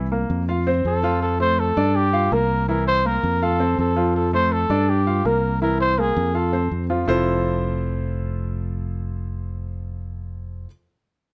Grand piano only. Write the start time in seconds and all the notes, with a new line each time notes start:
0.12 A#3 A#4
0.49 F4 F5
0.67 C4 C5
1.03 F3 F4
1.40 A3 A4
1.77 D4 D5
2.13 F4 F5
2.32 A#3 A#4
2.68 E3 E4
3.05 A#3 A#4
3.42 F4 F5
3.60 C4 C5
3.96 F3 F4
4.33 A3 A4
4.70 D4 D5
5.07 F4 F5
5.25 A#3 A#4
5.62 E3 E4
5.98 A#3 A#4
6.35 F4 F5
6.53 C4 C5
6.90 F3 F4
7.08 F3 C4 E4 F4 A4 C5